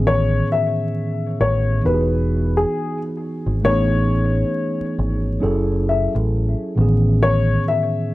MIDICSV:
0, 0, Header, 1, 5, 480
1, 0, Start_track
1, 0, Tempo, 895522
1, 28, Time_signature, 4, 2, 24, 8
1, 4365, End_track
2, 0, Start_track
2, 0, Title_t, "Upright piano"
2, 0, Program_c, 0, 0
2, 38, Note_on_c, 0, 73, 93
2, 251, Note_off_c, 0, 73, 0
2, 280, Note_on_c, 0, 76, 78
2, 733, Note_off_c, 0, 76, 0
2, 755, Note_on_c, 0, 73, 85
2, 970, Note_off_c, 0, 73, 0
2, 996, Note_on_c, 0, 71, 75
2, 1354, Note_off_c, 0, 71, 0
2, 1378, Note_on_c, 0, 68, 83
2, 1594, Note_off_c, 0, 68, 0
2, 1955, Note_on_c, 0, 73, 101
2, 2890, Note_off_c, 0, 73, 0
2, 3157, Note_on_c, 0, 76, 67
2, 3282, Note_off_c, 0, 76, 0
2, 3874, Note_on_c, 0, 73, 102
2, 4090, Note_off_c, 0, 73, 0
2, 4118, Note_on_c, 0, 76, 78
2, 4365, Note_off_c, 0, 76, 0
2, 4365, End_track
3, 0, Start_track
3, 0, Title_t, "Tine electric piano"
3, 0, Program_c, 1, 4
3, 0, Control_c, 1, 64, 127
3, 0, Note_on_c, 1, 45, 62
3, 0, Note_on_c, 1, 51, 60
3, 0, Note_on_c, 1, 52, 66
3, 0, Note_on_c, 1, 59, 61
3, 0, Note_on_c, 1, 61, 65
3, 0, Note_on_c, 1, 68, 75
3, 961, Note_off_c, 1, 45, 0
3, 963, Note_off_c, 1, 52, 0
3, 967, Note_off_c, 1, 59, 0
3, 970, Note_off_c, 1, 61, 0
3, 973, Note_off_c, 1, 51, 0
3, 974, Note_on_c, 1, 52, 57
3, 976, Note_off_c, 1, 68, 0
3, 982, Note_on_c, 1, 59, 53
3, 989, Note_on_c, 1, 63, 56
3, 994, Control_c, 1, 64, 0
3, 998, Note_on_c, 1, 66, 53
3, 1004, Note_on_c, 1, 67, 54
3, 1038, Note_off_c, 1, 67, 0
3, 1041, Note_on_c, 1, 68, 73
3, 1082, Control_c, 1, 64, 127
3, 1922, Note_off_c, 1, 52, 0
3, 1926, Note_off_c, 1, 59, 0
3, 1930, Note_off_c, 1, 63, 0
3, 1934, Note_off_c, 1, 66, 0
3, 1945, Note_on_c, 1, 57, 63
3, 1952, Note_on_c, 1, 52, 64
3, 1956, Note_off_c, 1, 68, 0
3, 1956, Control_c, 1, 64, 0
3, 1958, Note_on_c, 1, 59, 68
3, 1964, Note_on_c, 1, 61, 60
3, 1970, Note_on_c, 1, 63, 62
3, 1977, Note_on_c, 1, 68, 73
3, 2063, Control_c, 1, 64, 127
3, 2887, Note_off_c, 1, 57, 0
3, 2891, Note_off_c, 1, 52, 0
3, 2894, Note_off_c, 1, 59, 0
3, 2894, Note_off_c, 1, 61, 0
3, 2896, Note_on_c, 1, 54, 74
3, 2900, Note_off_c, 1, 63, 0
3, 2900, Note_on_c, 1, 61, 67
3, 2902, Note_off_c, 1, 68, 0
3, 2904, Note_on_c, 1, 64, 64
3, 2908, Note_on_c, 1, 68, 67
3, 2911, Note_on_c, 1, 69, 86
3, 2916, Control_c, 1, 64, 0
3, 3017, Control_c, 1, 64, 127
3, 3621, Note_on_c, 1, 45, 62
3, 3622, Note_off_c, 1, 54, 0
3, 3624, Note_off_c, 1, 61, 0
3, 3626, Note_off_c, 1, 64, 0
3, 3626, Note_on_c, 1, 52, 57
3, 3628, Note_off_c, 1, 68, 0
3, 3630, Note_off_c, 1, 69, 0
3, 3633, Note_on_c, 1, 59, 60
3, 3635, Control_c, 1, 64, 0
3, 3639, Note_on_c, 1, 61, 67
3, 3645, Note_on_c, 1, 51, 60
3, 3652, Note_on_c, 1, 68, 76
3, 3722, Control_c, 1, 64, 127
3, 4365, Note_off_c, 1, 45, 0
3, 4365, Note_off_c, 1, 51, 0
3, 4365, Note_off_c, 1, 52, 0
3, 4365, Note_off_c, 1, 59, 0
3, 4365, Note_off_c, 1, 61, 0
3, 4365, Note_off_c, 1, 68, 0
3, 4365, End_track
4, 0, Start_track
4, 0, Title_t, "Picked electric bass"
4, 0, Program_c, 2, 34
4, 0, Note_on_c, 2, 33, 105
4, 215, Note_off_c, 2, 33, 0
4, 753, Note_on_c, 2, 33, 86
4, 963, Note_off_c, 2, 33, 0
4, 993, Note_on_c, 2, 28, 104
4, 1414, Note_off_c, 2, 28, 0
4, 1857, Note_on_c, 2, 32, 86
4, 1940, Note_off_c, 2, 32, 0
4, 1952, Note_on_c, 2, 33, 99
4, 2374, Note_off_c, 2, 33, 0
4, 2672, Note_on_c, 2, 32, 95
4, 2882, Note_off_c, 2, 32, 0
4, 2912, Note_on_c, 2, 30, 102
4, 3249, Note_off_c, 2, 30, 0
4, 3296, Note_on_c, 2, 33, 90
4, 3506, Note_off_c, 2, 33, 0
4, 3632, Note_on_c, 2, 33, 99
4, 4054, Note_off_c, 2, 33, 0
4, 4365, End_track
5, 0, Start_track
5, 0, Title_t, "Muted picked electric bass strokes"
5, 2576, Note_on_c, 9, 29, 44
5, 2630, Note_off_c, 9, 29, 0
5, 4365, End_track
0, 0, End_of_file